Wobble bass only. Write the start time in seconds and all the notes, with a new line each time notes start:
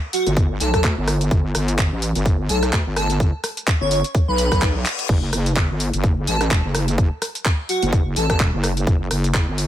0.27 G1
0.60 B1
0.84 D2
0.97 G1
1.31 G1
1.55 G1
1.92 A1
2.15 G1
2.49 B1
2.73 D2
2.86 G1
3.81 G1
4.28 B1
4.52 B1
5.09 F#1
5.33 F#1
5.70 G1
5.93 F#1
6.27 A1
6.51 E1
6.64 F#1
7.82 F#1
8.16 A1
8.40 E1
8.53 F#1
8.87 F#1
9.11 F#1
9.48 G1